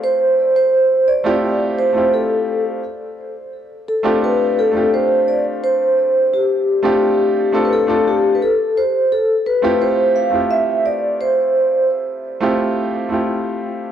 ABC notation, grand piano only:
X:1
M:4/4
L:1/16
Q:1/4=86
K:F
V:1 name="Grand piano"
[A,CEFG]6- [A,CEFG] [A,CEFG]4 [A,CEFG]4- [A,CEFG] | z6 z [A,CDFG]4 [A,CDFG]4- [A,CDFG]- | [A,CDFG]6- [A,CDFG] [A,CDFG]4 [A,CDFA]2 [A,CDFA]3 | z6 z [A,CEFG]4 [A,CEFG]4- [A,CEFG]- |
[A,CEFG]6- [A,CEFG] [A,CEFG]4 [A,CEFG]4- [A,CEFG] |]